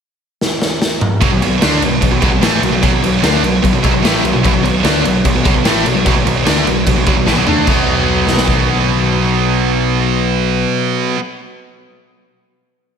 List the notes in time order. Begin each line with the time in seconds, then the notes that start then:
0.41 snare
0.62 snare
0.82 snare
1.01 mid tom
1.21 B1 B2 F#3, kick, crash
1.32 B1 B2 F#3
1.41 B1 B2 F#3, crash
1.62 D2 D3 A3 D4, snare, crash
1.82 B1 B2 F#3, crash
2.01 B1 B2 F#3, kick, crash
2.12 B1 B2 F#3
2.22 B1 B2 F#3, kick, crash
2.31 B1 B2 F#3
2.41 A1 A2 E3 A3, snare, crash
2.62 B1 B2 F#3, crash
2.72 B1 B2 F#3
2.83 B1 B2 F#3, kick, crash
2.93 B1 B2 F#3
3.02 B1 B2 F#3, crash
3.22 D2 D3 A3 D4, snare, crash
3.43 B1 B2 F#3, crash
3.63 B1 B2 F#3, kick, crash
3.73 B1 B2 F#3
3.83 B1 B2 F#3, kick, crash
3.93 B1 B2 F#3
4.04 A1 A2 E3 A3, snare, crash
4.23 B1 B2 F#3, crash
4.33 B1 B2 F#3
4.44 B1 B2 F#3, kick, crash
4.53 B1 B2 F#3
4.63 B1 B2 F#3, crash
4.83 D2 D3 A3 D4, snare, crash
5.04 B1 B2 F#3, crash
5.24 B1 B2 F#3, kick, crash
5.34 B1 B2 F#3
5.44 B1 B2 F#3, kick, crash
5.54 B1 B2 F#3
5.64 A1 A2 E3 A3, snare, crash
5.85 B1 B2 F#3, crash
5.94 B1 B2 F#3
6.05 B1 B2 F#3, kick, crash
6.15 B1 B2 F#3
6.25 B1 B2 F#3, crash
6.45 D2 D3 A3 D4, snare, crash
6.65 B1 B2 F#3, crash
6.87 B1 B2 F#3, kick, crash
6.96 B1 B2 F#3
7.06 B1 B2 F#3, kick, crash
7.17 B1 B2 F#3
7.26 A1 A2 E3, snare
7.36 B1 B2 F#3
7.46 D2 D3 A3 D4, floor tom
7.66 B1 B2 F#3, kick, crash
7.70 B3
8.27 snare
8.38 snare
8.48 kick